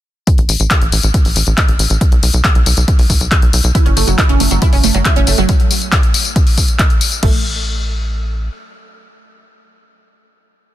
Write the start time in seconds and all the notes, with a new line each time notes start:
0.27 kick, closed hi-hat, tambourine
0.38 A1, closed hi-hat
0.49 A1, open hi-hat, tambourine
0.60 A1, closed hi-hat, tambourine
0.71 kick, clap, closed hi-hat, tambourine
0.82 A1, closed hi-hat
0.92 A1, open hi-hat, tambourine
1.03 A1, closed hi-hat, tambourine
1.14 kick, closed hi-hat, tambourine
1.25 A1, open hi-hat
1.36 A1, open hi-hat, tambourine
1.47 A1, closed hi-hat, tambourine
1.58 kick, clap, closed hi-hat, tambourine
1.68 A1, closed hi-hat
1.79 A1, open hi-hat, tambourine
1.90 A1, closed hi-hat, tambourine
2.01 kick, closed hi-hat, tambourine
2.12 B1, closed hi-hat
2.23 B1, open hi-hat, tambourine
2.34 B1, closed hi-hat, tambourine
2.45 kick, clap, closed hi-hat
2.55 B1, closed hi-hat
2.66 B1, open hi-hat, tambourine
2.77 B1, closed hi-hat, tambourine
2.88 kick, closed hi-hat, tambourine
2.99 B1, open hi-hat
3.10 B1, kick, open hi-hat, tambourine
3.20 B1, closed hi-hat, tambourine
3.31 kick, clap, closed hi-hat, tambourine
3.42 B1, closed hi-hat
3.53 B1, open hi-hat, tambourine
3.64 B1, closed hi-hat, tambourine
3.75 E4, kick, closed hi-hat, tambourine
3.86 F#1 C#4, closed hi-hat
3.96 F#1 A3, open hi-hat, tambourine
4.07 F#1 F#3, closed hi-hat, tambourine
4.18 E4, kick, clap, closed hi-hat, tambourine
4.29 F#1 C#4, closed hi-hat
4.40 F#1 A3, open hi-hat, tambourine
4.51 F#1 F#3, closed hi-hat, tambourine
4.62 E4, kick, closed hi-hat, tambourine
4.73 F#1 C#4, open hi-hat
4.84 F#1 A3, open hi-hat, tambourine
4.94 F#1 F#3, closed hi-hat, tambourine
5.05 E4, kick, clap, closed hi-hat, tambourine
5.16 F#1 C#4, closed hi-hat
5.27 F#1 A3, open hi-hat, tambourine
5.38 F#1 F#3, tambourine
5.49 kick, closed hi-hat, tambourine
5.60 closed hi-hat
5.71 open hi-hat, tambourine
5.82 closed hi-hat, tambourine
5.92 kick, clap, closed hi-hat, tambourine
6.03 closed hi-hat
6.14 open hi-hat, tambourine
6.25 closed hi-hat, tambourine
6.36 kick, closed hi-hat, tambourine
6.47 open hi-hat
6.58 kick, open hi-hat, tambourine
6.68 closed hi-hat, tambourine
6.79 kick, clap, closed hi-hat, tambourine
6.90 closed hi-hat
7.01 open hi-hat, tambourine
7.12 closed hi-hat, tambourine
7.23 A1 A3, kick, crash